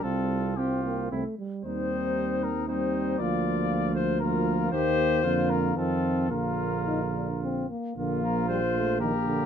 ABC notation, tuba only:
X:1
M:3/4
L:1/8
Q:1/4=115
K:Cmix
V:1 name="Tuba" clef=bass
C,,4 C,, z | [K:Bb] E,,6 | D,,6 | E,,2 F,,2 F,,2 |
B,,,4- B,,, z | B,,,6 |]